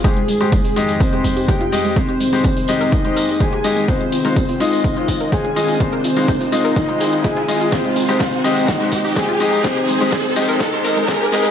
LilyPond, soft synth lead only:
\new Staff \with { instrumentName = "Soft synth lead" } { \time 4/4 \key aes \major \tempo 4 = 125 aes2 c'4 g'4 | c'2 ees'4 aes'4 | c'4. ees'4. aes'4 | c'2 ees'4 aes'4 |
c'2 ees'4 aes'4 | c'2 ees'4 aes'4 | }